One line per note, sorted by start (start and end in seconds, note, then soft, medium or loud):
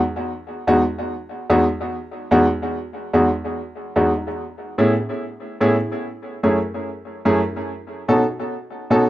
0.67 0.81 E2 medium
0.67 0.81 G#3 medium
0.67 0.81 B3 medium
0.67 0.81 D#4 medium
0.67 0.81 F#4 loud
1.50 1.63 E2 medium
1.50 1.63 G#3 medium
1.50 1.63 B3 medium
1.50 1.63 D#4 medium
1.50 1.63 F#4 loud
2.31 2.45 E2 loud
2.31 2.45 G#3 medium
2.31 2.45 B3 medium
2.31 2.46 D#4 medium
2.31 2.45 F#4 loud
3.13 3.27 E2 medium
3.13 3.27 G#3 medium
3.13 3.28 B3 medium
3.13 3.28 D#4 medium
3.13 3.28 F#4 medium
3.96 4.10 E2 medium
3.96 4.10 G#3 medium
3.96 4.10 B3 medium
3.96 4.10 D#4 medium
3.96 4.10 F#4 medium
4.18 4.26 D#4 soft
4.18 4.26 F#4 soft
4.78 4.92 A2 medium
4.78 4.92 B3 medium
4.78 4.92 C#4 medium
4.78 4.92 E4 medium
4.78 4.92 G#4 medium
5.00 5.08 E4 soft
5.00 5.08 G#4 soft
5.61 5.74 A2 medium
5.61 5.75 B3 medium
5.61 5.75 C#4 medium
5.61 5.75 E4 medium
5.61 5.75 G#4 loud
5.81 5.90 E4 soft
5.81 5.90 G#4 soft
6.43 6.57 F#2 medium
6.43 6.57 A3 medium
6.43 6.57 C#4 medium
6.43 6.57 E4 medium
6.43 6.57 G#4 medium
7.25 7.39 F#2 medium
7.25 7.39 A3 medium
7.25 7.39 C#4 medium
7.25 7.39 E4 medium
7.25 7.39 G#4 loud
8.08 8.22 B2 medium
8.08 8.22 C#4 medium
8.08 8.22 D#4 medium
8.08 8.22 F#4 medium
8.08 8.22 A4 medium
8.30 8.38 F#4 soft
8.30 8.38 A4 soft
8.90 9.04 B2 medium
8.90 9.04 C#4 medium
8.90 9.04 D#4 medium
8.90 9.04 F#4 medium
8.90 9.04 A4 loud